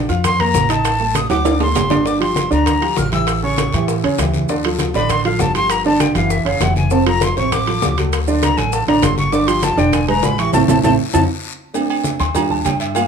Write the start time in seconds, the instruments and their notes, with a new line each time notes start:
0.09 upright bass F2, grand piano F4 F5 F6, high conga, short guiro, maracas
0.24 flute C6, high bongo, high conga, low conga, high timbale, long guiro, maracas
0.40 grand piano A#3 A#4 A#5, flute A#5, high conga, low conga, high timbale
0.54 upright bass A1, high bongo, low bongo, high conga, short guiro, maracas
0.69 grand piano D#4 D#5 D#6, flute A5, high conga, high timbale, short guiro, maracas
0.84 high bongo, high conga, high timbale, long guiro, maracas
1.00 grand piano A3 A4 A5, high bongo, high conga
1.15 flute D#6, high bongo, high conga, high timbale, short guiro, maracas
1.30 upright bass D2, grand piano F#3 F#4 F#5, flute D6, high bongo, high conga, high timbale, short guiro, maracas
1.44 grand piano D4 D5 D6, high bongo, high conga, high timbale, long guiro, maracas
1.59 grand piano A3 A4 A5, flute C6, high bongo, high conga, low timbale
1.75 upright bass G1, low bongo, high conga, low timbale, short guiro, maracas
1.90 grand piano D3 D4 D5, low bongo, high conga, low timbale, short guiro, maracas
2.05 grand piano D3 D4 D5, flute D6, high bongo, long guiro, maracas
2.20 grand piano F3 F4 G4, flute C6, high conga, high timbale
2.36 high bongo, high conga, high timbale, short guiro, maracas
2.50 upright bass D2, grand piano D3 D4 D5, flute A#5, short guiro, maracas
2.66 high bongo, high conga, low conga, high timbale, long guiro, maracas
2.81 grand piano F3 F4 G4, high timbale
2.96 upright bass A1, flute F6, high bongo, low bongo, high conga, short guiro, maracas
3.12 grand piano E3 E4 G4, flute E6, high conga, high timbale, short guiro, maracas
3.27 high bongo, high timbale, long guiro, maracas
3.42 grand piano C#3 C#4 C#5, flute C#6, high bongo, high conga
3.57 high bongo, high conga, high timbale, short guiro, maracas
3.73 upright bass A2, grand piano E3 E4 G4, high bongo, high conga, high timbale, short guiro, maracas
3.88 high bongo, high conga, long guiro, maracas
4.03 upright bass E2, grand piano C#3 C#4 C#5, high bongo, high conga, high timbale
4.18 upright bass D2, grand piano E3 E4 G4, high bongo, low bongo, high conga, high timbale, short guiro, maracas
4.34 high conga, short guiro, maracas
4.49 grand piano D3 D4 D5, high bongo, high conga, long guiro, maracas
4.64 grand piano F3 F4 A4, high conga, high timbale
4.79 high bongo, high conga, high timbale, short guiro, maracas
4.94 upright bass A1, grand piano D3 D4 D5, flute B5, high conga, short guiro, maracas
5.09 flute C6, high bongo, high conga, low conga, high timbale, long guiro, maracas
5.25 grand piano F3 F4 A4, flute F5, high conga, high timbale
5.39 upright bass G1, flute A5, high bongo, low bongo, high conga, low timbale, short guiro, maracas
5.55 grand piano F3 F4 G4, flute C6, high timbale, short guiro, maracas
5.70 flute A#5, high bongo, high conga, high timbale, long guiro, maracas
5.85 grand piano D3 D4 D5, flute A5, high bongo, high conga
6.00 flute G5, high bongo, high conga, high timbale, short guiro, maracas
6.15 upright bass F#1, grand piano E3 E4 F#4, flute F5, high bongo, high conga, high timbale, short guiro, maracas
6.30 flute E5, high bongo, high conga, long guiro, maracas
6.45 upright bass F#1, grand piano C#3 C#4 C#5, flute F5, high bongo, high conga, high timbale
6.60 upright bass F1, grand piano E3 E4 F#4, flute F#5, high bongo, low bongo, high conga, high timbale, low timbale, short guiro, maracas
6.76 flute G#5, high conga, short guiro, maracas
6.90 grand piano C3 C4 C5, flute A5, high bongo, long guiro, maracas
7.06 grand piano F3 F4 A4, flute A#5, high conga, high timbale
7.21 flute C6, high bongo, high conga, high timbale, short guiro, maracas
7.37 upright bass A1, grand piano C3 C4 C5, flute C#6, high conga, short guiro, maracas
7.52 flute D6, high bongo, high conga, low conga, high timbale, long guiro, maracas
7.67 grand piano F3 F4 A4, high conga, high timbale
7.82 upright bass D2, high bongo, low bongo, high conga, low timbale, short guiro, maracas
7.97 grand piano F#3 F#4 A4, high conga, high timbale, short guiro, maracas
8.12 high bongo, high conga, high timbale, long guiro, maracas
8.28 grand piano D3 D4 D5, high bongo, high conga, maracas
8.43 flute A#5, high bongo, high conga, high timbale, short guiro, maracas
8.57 upright bass A1, grand piano F#3 F#4 A4, flute G#5, high bongo, high timbale, short guiro, maracas
8.72 flute A5, high bongo, high conga, long guiro, maracas
8.87 upright bass A1, grand piano D3 D4 D5, flute A#5, high bongo, high conga, high timbale
9.02 upright bass G1, grand piano F#3 F#4 A4, flute C6, high bongo, low bongo, high conga, high timbale, low timbale, short guiro, maracas
9.18 flute C#6, high conga, short guiro, maracas
9.32 grand piano D3 D4 D5, flute D6, high bongo, high conga, long guiro, maracas
9.47 grand piano F3 F4 G4, flute C6, high timbale, maracas
9.63 flute A5, high bongo, high conga, high timbale, short guiro, maracas
9.77 upright bass E1, grand piano D3 D4 D5, flute G5, short guiro, maracas
9.92 flute G#5, high bongo, high conga, low conga, high timbale, long guiro, maracas
10.08 grand piano G#3 G#4 B4, flute A#5, high conga, low conga, high timbale
10.22 upright bass A1, flute B5, high bongo, low bongo, high conga, short guiro, maracas
10.38 grand piano E3 E4 G4, flute C#6, high timbale, short guiro, maracas
10.53 upright bass A1, grand piano A3 C4 E4, flute A5, low bongo, high conga, high timbale, long guiro, maracas
10.68 upright bass A1, grand piano A3 C4 E4, flute A5, low bongo, high conga, high timbale, long guiro, maracas
10.83 upright bass A1, grand piano A3 C4 E4, flute A5, low bongo, high conga, high timbale, long guiro, maracas
11.13 upright bass F2, grand piano C4 D#4 F4, flute A5, low bongo, high conga, high timbale, long guiro, maracas
11.74 grand piano A3 C4 D4, cowbell, high conga, low agogo, long guiro, maracas
11.90 high conga, low agogo
12.04 cowbell, high conga, short guiro, maracas
12.19 upright bass D#2, grand piano C6, cowbell, high conga, low agogo, short guiro, maracas
12.34 grand piano G3 D4 F4 A#5, cowbell, high conga, low conga, low agogo, long guiro, maracas
12.50 grand piano A5, high conga, low conga
12.65 upright bass G2, grand piano G5, cowbell, high conga, low timbale, low agogo, short guiro, maracas
12.80 grand piano E5, cowbell, low agogo, short guiro, maracas
12.95 grand piano A3 A#3 F4 F5, cowbell, high conga, low agogo, long guiro, maracas